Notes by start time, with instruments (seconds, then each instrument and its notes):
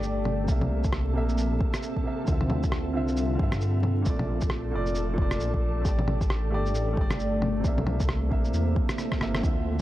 Already playing: detuned saw bass G1, ambient pad A3 G4 D5, upright piano A3 G4 D5, synth texture A4
0.03 shaker
0.25 low bongo
0.44 upright piano C3 A#3, ambient pad A#3 C4 E5
0.48 detuned saw bass C2, upright piano E5, kick, shaker
0.61 low bongo
0.84 kick, shaker
0.93 cross-stick
1.13 detuned saw bass A#1, upright piano C3 A#3
1.17 upright piano E5
1.29 shaker
1.38 shaker
1.61 kick
1.74 cross-stick, shaker
1.82 shaker
1.97 kick
2.03 upright piano C3 A#3 E5
2.24 detuned saw bass D2, upright piano D3 C4, kick, shaker
2.28 ambient pad F4, upright piano F4
2.32 upright piano E5
2.41 low bongo
2.50 low bongo
2.63 kick, shaker
2.72 cross-stick
2.93 detuned saw bass C2, upright piano D3 C4 F4 E5
3.08 shaker
3.17 shaker
3.35 upright piano D3 C4
3.39 detuned saw bass G2, upright piano F4 E5, kick
3.52 cross-stick, low bongo, shaker
3.61 shaker
3.83 low bongo
4.02 upright piano A#2, shaker
4.06 detuned saw bass A#1, upright piano A3 D5, ambient pad A4 D5, kick
4.19 low bongo
4.41 kick, shaker
4.50 cross-stick
4.72 detuned saw bass F1, upright piano A#2 A3 D5
4.86 shaker
4.95 shaker
5.14 upright piano A#2
5.18 detuned saw bass F1, upright piano A3 D5, kick
5.31 cross-stick, shaker
5.40 detuned saw bass A#1, shaker
5.54 kick
5.81 detuned saw bass A1, upright piano A3 G4, kick
5.85 ambient pad A3 G4, upright piano D5, shaker
5.99 low bongo
6.08 low bongo
6.21 kick, shaker
6.30 cross-stick
6.50 detuned saw bass G1, upright piano A3 G4
6.54 upright piano D5
6.66 shaker
6.74 detuned saw bass A1, shaker
6.93 upright piano A3
6.97 detuned saw bass G1, upright piano G4, kick
7.01 upright piano D5
7.11 cross-stick, low bongo, shaker
7.20 shaker
7.42 low bongo
7.60 upright piano C3 A#3, ambient pad A#3 C5
7.64 detuned saw bass C2, ambient pad E4, upright piano E5, kick, shaker
7.78 low bongo
7.87 low bongo
8.00 kick, shaker
8.09 cross-stick
8.29 detuned saw bass A#1, upright piano C3 A#3 E5, kick
8.45 shaker
8.54 detuned saw bass E2, shaker
8.76 kick
8.89 cross-stick, shaker
8.98 cross-stick, shaker
9.12 kick, cross-stick
9.19 detuned saw bass G1, upright piano C3 A#3 E5, cross-stick
9.35 cross-stick, shaker
9.39 upright piano D3 C4, ambient pad C4 E5
9.43 detuned saw bass D2, ambient pad F4, upright piano F4, synth texture E5, kick, shaker
9.47 upright piano E5